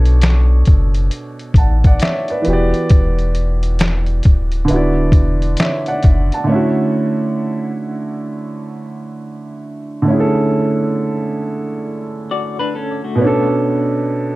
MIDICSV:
0, 0, Header, 1, 5, 480
1, 0, Start_track
1, 0, Key_signature, 2, "major"
1, 0, Tempo, 895522
1, 1558, Time_signature, 4, 2, 24, 8
1, 7695, End_track
2, 0, Start_track
2, 0, Title_t, "Clean electric guitar"
2, 0, Program_c, 0, 27
2, 6599, Note_on_c, 0, 74, 72
2, 6601, Note_on_c, 0, 66, 67
2, 6742, Note_off_c, 0, 74, 0
2, 6743, Note_off_c, 0, 66, 0
2, 6750, Note_on_c, 0, 71, 94
2, 6756, Note_on_c, 0, 62, 82
2, 6834, Note_on_c, 0, 69, 84
2, 6835, Note_off_c, 0, 71, 0
2, 6837, Note_off_c, 0, 62, 0
2, 6839, Note_on_c, 0, 61, 78
2, 6979, Note_off_c, 0, 69, 0
2, 6982, Note_off_c, 0, 61, 0
2, 6990, Note_on_c, 0, 57, 58
2, 6992, Note_on_c, 0, 66, 61
2, 7217, Note_off_c, 0, 66, 0
2, 7218, Note_off_c, 0, 57, 0
2, 7695, End_track
3, 0, Start_track
3, 0, Title_t, "Upright piano"
3, 0, Program_c, 1, 0
3, 0, Control_c, 1, 64, 127
3, 0, Note_on_c, 1, 47, 77
3, 0, Note_on_c, 1, 59, 74
3, 0, Note_on_c, 1, 62, 71
3, 0, Note_on_c, 1, 69, 83
3, 0, Note_on_c, 1, 73, 91
3, 844, Note_on_c, 1, 81, 58
3, 849, Note_on_c, 1, 78, 53
3, 851, Note_off_c, 1, 73, 0
3, 984, Note_off_c, 1, 81, 0
3, 987, Note_off_c, 1, 78, 0
3, 999, Note_on_c, 1, 78, 68
3, 1002, Note_on_c, 1, 74, 65
3, 1079, Note_off_c, 1, 78, 0
3, 1081, Note_off_c, 1, 74, 0
3, 1084, Note_on_c, 1, 76, 70
3, 1086, Note_on_c, 1, 73, 57
3, 1224, Note_off_c, 1, 76, 0
3, 1226, Note_off_c, 1, 73, 0
3, 1234, Note_on_c, 1, 74, 60
3, 1239, Note_on_c, 1, 71, 51
3, 1285, Note_off_c, 1, 47, 0
3, 1292, Note_off_c, 1, 59, 0
3, 1296, Note_on_c, 1, 52, 80
3, 1299, Note_off_c, 1, 62, 0
3, 1307, Note_off_c, 1, 69, 0
3, 1310, Note_on_c, 1, 59, 69
3, 1325, Control_c, 1, 64, 0
3, 1328, Note_on_c, 1, 66, 69
3, 1339, Note_on_c, 1, 67, 68
3, 1348, Note_off_c, 1, 74, 0
3, 1356, Note_on_c, 1, 74, 89
3, 1427, Control_c, 1, 64, 127
3, 1462, Note_off_c, 1, 71, 0
3, 2486, Note_off_c, 1, 52, 0
3, 2492, Note_on_c, 1, 50, 72
3, 2493, Note_off_c, 1, 59, 0
3, 2502, Note_off_c, 1, 66, 0
3, 2507, Note_off_c, 1, 67, 0
3, 2508, Note_on_c, 1, 59, 66
3, 2516, Note_off_c, 1, 74, 0
3, 2522, Note_on_c, 1, 64, 68
3, 2525, Control_c, 1, 64, 0
3, 2538, Note_on_c, 1, 66, 68
3, 2553, Note_on_c, 1, 74, 78
3, 2621, Control_c, 1, 64, 127
3, 3001, Note_on_c, 1, 76, 64
3, 3005, Note_on_c, 1, 73, 51
3, 3006, Note_off_c, 1, 74, 0
3, 3143, Note_off_c, 1, 76, 0
3, 3145, Note_off_c, 1, 73, 0
3, 3152, Note_on_c, 1, 78, 71
3, 3154, Note_on_c, 1, 74, 61
3, 3379, Note_off_c, 1, 78, 0
3, 3380, Note_off_c, 1, 74, 0
3, 3398, Note_on_c, 1, 81, 60
3, 3400, Note_on_c, 1, 78, 48
3, 3443, Note_off_c, 1, 50, 0
3, 3452, Note_on_c, 1, 50, 69
3, 3454, Note_off_c, 1, 59, 0
3, 3461, Note_off_c, 1, 64, 0
3, 3466, Note_on_c, 1, 57, 76
3, 3469, Note_off_c, 1, 66, 0
3, 3481, Note_on_c, 1, 61, 70
3, 3485, Control_c, 1, 64, 0
3, 3496, Note_on_c, 1, 64, 73
3, 3512, Note_on_c, 1, 66, 79
3, 3570, Control_c, 1, 64, 127
3, 3622, Note_off_c, 1, 81, 0
3, 3623, Note_off_c, 1, 78, 0
3, 5363, Note_off_c, 1, 50, 0
3, 5371, Note_off_c, 1, 57, 0
3, 5371, Note_on_c, 1, 50, 70
3, 5378, Note_off_c, 1, 61, 0
3, 5386, Note_off_c, 1, 64, 0
3, 5387, Note_on_c, 1, 57, 65
3, 5393, Note_off_c, 1, 66, 0
3, 5402, Note_on_c, 1, 61, 74
3, 5416, Note_on_c, 1, 64, 70
3, 5433, Note_on_c, 1, 68, 61
3, 5459, Note_off_c, 1, 68, 0
3, 5468, Note_on_c, 1, 69, 90
3, 7043, Note_off_c, 1, 50, 0
3, 7051, Note_off_c, 1, 57, 0
3, 7051, Note_on_c, 1, 47, 83
3, 7059, Note_off_c, 1, 61, 0
3, 7064, Note_on_c, 1, 59, 71
3, 7066, Note_off_c, 1, 64, 0
3, 7082, Note_on_c, 1, 61, 80
3, 7084, Control_c, 1, 64, 0
3, 7092, Note_off_c, 1, 69, 0
3, 7097, Note_on_c, 1, 62, 79
3, 7111, Note_on_c, 1, 69, 96
3, 7178, Control_c, 1, 64, 127
3, 7695, Note_off_c, 1, 47, 0
3, 7695, Note_off_c, 1, 59, 0
3, 7695, Note_off_c, 1, 61, 0
3, 7695, Note_off_c, 1, 62, 0
3, 7695, Note_off_c, 1, 69, 0
3, 7695, End_track
4, 0, Start_track
4, 0, Title_t, "Sub bass"
4, 0, Program_c, 2, 38
4, 0, Note_on_c, 2, 35, 108
4, 338, Note_off_c, 2, 35, 0
4, 363, Note_on_c, 2, 30, 105
4, 589, Note_off_c, 2, 30, 0
4, 827, Note_on_c, 2, 33, 99
4, 1060, Note_off_c, 2, 33, 0
4, 1324, Note_on_c, 2, 28, 107
4, 1464, Note_off_c, 2, 28, 0
4, 1560, Note_on_c, 2, 28, 112
4, 2257, Note_off_c, 2, 28, 0
4, 2282, Note_on_c, 2, 26, 97
4, 2508, Note_off_c, 2, 26, 0
4, 2520, Note_on_c, 2, 26, 105
4, 2744, Note_off_c, 2, 26, 0
4, 2747, Note_on_c, 2, 28, 95
4, 2980, Note_off_c, 2, 28, 0
4, 3239, Note_on_c, 2, 30, 94
4, 3382, Note_off_c, 2, 30, 0
4, 7695, End_track
5, 0, Start_track
5, 0, Title_t, "Drums"
5, 29, Note_on_c, 9, 42, 50
5, 83, Note_off_c, 9, 42, 0
5, 115, Note_on_c, 9, 42, 91
5, 118, Note_on_c, 9, 26, 63
5, 125, Note_on_c, 9, 38, 125
5, 131, Note_on_c, 9, 39, 91
5, 169, Note_off_c, 9, 42, 0
5, 172, Note_off_c, 9, 26, 0
5, 178, Note_off_c, 9, 38, 0
5, 185, Note_off_c, 9, 39, 0
5, 351, Note_on_c, 9, 42, 62
5, 361, Note_on_c, 9, 36, 87
5, 404, Note_off_c, 9, 42, 0
5, 415, Note_off_c, 9, 36, 0
5, 506, Note_on_c, 9, 42, 46
5, 560, Note_off_c, 9, 42, 0
5, 596, Note_on_c, 9, 42, 74
5, 649, Note_off_c, 9, 42, 0
5, 747, Note_on_c, 9, 42, 31
5, 801, Note_off_c, 9, 42, 0
5, 826, Note_on_c, 9, 36, 90
5, 834, Note_on_c, 9, 42, 56
5, 880, Note_off_c, 9, 36, 0
5, 888, Note_off_c, 9, 42, 0
5, 987, Note_on_c, 9, 42, 46
5, 988, Note_on_c, 9, 36, 90
5, 1041, Note_off_c, 9, 42, 0
5, 1042, Note_off_c, 9, 36, 0
5, 1070, Note_on_c, 9, 42, 95
5, 1082, Note_on_c, 9, 26, 69
5, 1086, Note_on_c, 9, 38, 113
5, 1092, Note_on_c, 9, 39, 85
5, 1123, Note_off_c, 9, 42, 0
5, 1136, Note_off_c, 9, 26, 0
5, 1140, Note_off_c, 9, 38, 0
5, 1146, Note_off_c, 9, 39, 0
5, 1223, Note_on_c, 9, 42, 33
5, 1276, Note_off_c, 9, 42, 0
5, 1312, Note_on_c, 9, 42, 65
5, 1365, Note_off_c, 9, 42, 0
5, 1468, Note_on_c, 9, 42, 48
5, 1521, Note_off_c, 9, 42, 0
5, 1552, Note_on_c, 9, 42, 78
5, 1557, Note_on_c, 9, 36, 106
5, 1606, Note_off_c, 9, 42, 0
5, 1611, Note_off_c, 9, 36, 0
5, 1708, Note_on_c, 9, 42, 35
5, 1761, Note_off_c, 9, 42, 0
5, 1794, Note_on_c, 9, 42, 61
5, 1848, Note_off_c, 9, 42, 0
5, 1945, Note_on_c, 9, 42, 49
5, 1998, Note_off_c, 9, 42, 0
5, 2032, Note_on_c, 9, 42, 85
5, 2039, Note_on_c, 9, 26, 56
5, 2041, Note_on_c, 9, 38, 121
5, 2048, Note_on_c, 9, 39, 92
5, 2085, Note_off_c, 9, 42, 0
5, 2092, Note_off_c, 9, 26, 0
5, 2095, Note_off_c, 9, 38, 0
5, 2101, Note_off_c, 9, 39, 0
5, 2179, Note_on_c, 9, 42, 35
5, 2232, Note_off_c, 9, 42, 0
5, 2267, Note_on_c, 9, 42, 65
5, 2280, Note_on_c, 9, 36, 86
5, 2321, Note_off_c, 9, 42, 0
5, 2333, Note_off_c, 9, 36, 0
5, 2421, Note_on_c, 9, 42, 45
5, 2474, Note_off_c, 9, 42, 0
5, 2510, Note_on_c, 9, 42, 77
5, 2564, Note_off_c, 9, 42, 0
5, 2744, Note_on_c, 9, 36, 93
5, 2749, Note_on_c, 9, 42, 60
5, 2798, Note_off_c, 9, 36, 0
5, 2803, Note_off_c, 9, 42, 0
5, 2906, Note_on_c, 9, 42, 45
5, 2959, Note_off_c, 9, 42, 0
5, 2985, Note_on_c, 9, 42, 97
5, 3001, Note_on_c, 9, 26, 70
5, 3001, Note_on_c, 9, 38, 115
5, 3007, Note_on_c, 9, 39, 89
5, 3038, Note_off_c, 9, 42, 0
5, 3054, Note_off_c, 9, 26, 0
5, 3055, Note_off_c, 9, 38, 0
5, 3061, Note_off_c, 9, 39, 0
5, 3142, Note_on_c, 9, 42, 34
5, 3195, Note_off_c, 9, 42, 0
5, 3230, Note_on_c, 9, 42, 60
5, 3238, Note_on_c, 9, 36, 76
5, 3284, Note_off_c, 9, 42, 0
5, 3292, Note_off_c, 9, 36, 0
5, 3389, Note_on_c, 9, 42, 48
5, 3442, Note_off_c, 9, 42, 0
5, 7695, End_track
0, 0, End_of_file